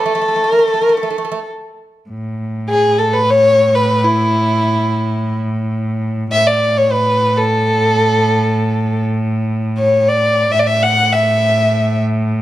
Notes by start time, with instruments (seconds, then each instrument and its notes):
Already playing: violin A4
0.06 bouzouki A3
0.15 bouzouki A3
0.22 bouzouki A3
0.28 bouzouki A3
0.36 bouzouki A3
0.44 bouzouki A3
0.51 bouzouki A3, violin A#4
0.59 bouzouki A3
0.66 bouzouki A3, violin A4
0.74 bouzouki A3
0.81 bouzouki A3, violin A#4
0.89 bouzouki A3
0.96 bouzouki A3, violin A4
1.03 bouzouki A3
1.10 bouzouki A3
1.18 bouzouki A3
1.25 bouzouki A3
1.32 bouzouki A3
2.10 cello A2
2.69 violin G#4
2.99 violin A4
3.13 violin B4
3.30 violin C#5
3.75 violin B4
4.04 violin E4
6.31 cello A2, violin E5
6.47 violin D5
6.78 violin C#5
6.92 violin B4
7.37 violin A4
9.78 violin C#5
10.09 violin D5
10.52 cello A2, violin E5
10.60 violin D5
10.67 violin E5
10.83 violin F#5
11.13 violin E5